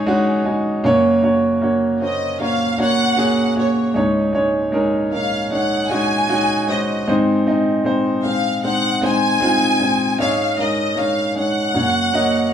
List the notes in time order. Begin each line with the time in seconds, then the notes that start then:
Already playing: G#2 G#3 C#4 D#4 G#4 C#5 D#5
0.06 G#3 C#4 D#4 F#4 F#5
0.45 G#3 C#4 D#4 F#4 G#5
0.84 F#2 C#3 A#3 C#4 F#4 C#5
1.22 A#3 C#4 F#4 C#5
1.61 A#3 C#4 F#4 C#5
2.01 A#3 C#4 F#4 C5 D#5
2.40 A#3 C#4 F#4 C#5 F5
2.78 A#3 C#4 F#4 C#5 F#5
3.16 A#3 C#4 F#4 G#4
3.56 A#3 C#4 F#4 C#5
3.94 C#2 G#2 G#3 C#4 D#4 C#5
4.33 G#3 C#4 D#4 C#5
4.72 G#3 C#4 D#4 A#4
5.12 G#3 C#4 D#4 A#4 F5
5.50 G#3 C#4 D#4 C#5 F#5
5.90 G#3 C#4 D#4 F#4 G#5
6.28 G#3 C#4 D#4 F#4
6.67 G#3 C#4 D#4 C5
6.71 D#5
7.07 G#2 D#3 G#3 C4 D#4 C5
7.47 G#3 C4 D#4 D#5
7.84 G#3 C4 D#4 C5
8.24 G#3 C4 D#4 C5 F5
8.63 G#3 C4 D#4 C5 F#5
9.02 G#3 C4 D#4 C5 G#5
9.40 G#3 C4 D#4 F4
9.80 G#3 C4 D#4 C5
10.19 G#2 G#3 C#4 D#4 C#5 F5
10.57 G#3 C#4 D#4 A#4 D#5
10.95 G#3 C#4 D#4 C#5
11.00 F5
11.35 G#3 C#4 D#4 C#5 F#5
11.74 F#2 C#3 A#3 C#4 F#4 C#5
12.13 A#3 C#4 F#4 D#5